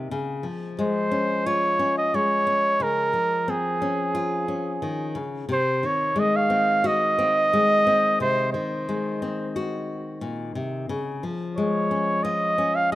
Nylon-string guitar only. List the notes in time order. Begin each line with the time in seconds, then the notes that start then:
Already playing: C3 D#3 G#3
0.11 C#3
0.43 F3
0.79 G#3
1.11 C#4
1.46 F4
1.79 C#4
2.14 G#3
2.47 C#4
2.80 C#3
3.13 F3
3.48 C4
3.82 C#4
4.15 F4
4.48 C#4
4.82 D#3
5.15 C#3
5.49 C3
5.83 D#3
6.16 G#3
6.50 C4
6.84 F#4
7.19 C4
7.53 G#3
7.87 C4
8.20 C3
8.54 D#3
8.89 G#3
9.22 C4
9.56 F#4
10.21 A#2
10.55 C3
10.89 C#3
11.23 F3
11.58 G#3
11.91 C#4
12.25 F4
12.58 C#4